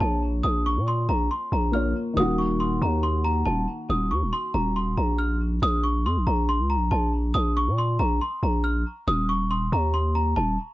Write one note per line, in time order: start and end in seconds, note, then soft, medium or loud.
0.00 0.42 A#1 loud
0.00 1.68 A#3 medium
0.00 1.70 F4 medium
0.00 1.71 C#5 medium
0.00 0.20 A5 medium
0.43 0.79 A#1 loud
0.43 0.63 D#6 loud
0.66 0.85 C#6 medium
0.77 1.07 A#2 loud
0.88 1.07 C6 medium
1.09 1.30 A#1 loud
1.09 1.28 A#5 medium
1.31 1.50 C6 medium
1.52 1.94 A#1 loud
1.52 1.72 A#5 medium
1.72 2.15 A#3 medium
1.72 2.17 F4 soft
1.72 2.17 C#5 medium
1.72 1.93 F6 medium
2.14 2.79 D#1 loud
2.14 5.57 D#3 medium
2.14 5.58 A#3 medium
2.14 2.37 D#6 loud
2.20 5.60 F#4 medium
2.38 2.58 C#6 medium
2.60 2.80 C6 medium
2.82 3.44 D#2 loud
2.82 3.01 A#5 medium
3.03 3.23 C6 medium
3.25 3.44 A#5 medium
3.46 3.67 D#1 loud
3.46 3.65 A5 medium
3.90 4.13 D#1 loud
3.90 4.09 D#6 medium
4.11 4.24 D#2 loud
4.11 4.31 C#6 medium
4.23 4.32 D#1 loud
4.33 4.52 C6 medium
4.54 4.96 D#1 loud
4.54 4.74 A#5 medium
4.76 4.96 C6 medium
4.97 5.60 A#1 loud
4.97 5.17 A#5 medium
5.18 5.38 F6 medium
5.62 6.07 A#1 loud
5.62 5.82 D#6 loud
5.84 6.03 C#6 medium
6.05 6.18 F2 loud
6.05 6.25 C6 medium
6.17 6.26 A#1 loud
6.27 6.61 A#1 loud
6.27 6.46 A#5 medium
6.49 6.68 C6 medium
6.60 6.77 C#2 loud
6.70 6.89 A#5 medium
6.76 6.91 A#1 loud
6.91 7.33 A#1 loud
6.91 7.11 A5 medium
7.34 7.69 A#1 loud
7.34 7.54 D#6 loud
7.57 7.76 C#6 medium
7.68 7.98 A#2 loud
7.78 7.98 C6 medium
7.99 8.20 A#1 loud
7.99 8.19 A#5 medium
8.21 8.41 C6 medium
8.43 8.84 A#1 loud
8.43 8.63 A#5 medium
8.64 8.84 F6 medium
9.08 9.70 D#1 loud
9.08 9.27 D#6 loud
9.29 9.49 C#6 medium
9.51 9.70 C6 medium
9.72 10.34 D#2 loud
9.72 9.92 A#5 medium
9.94 10.13 C6 medium
10.15 10.35 A#5 medium
10.36 10.58 D#1 loud
10.36 10.56 A5 loud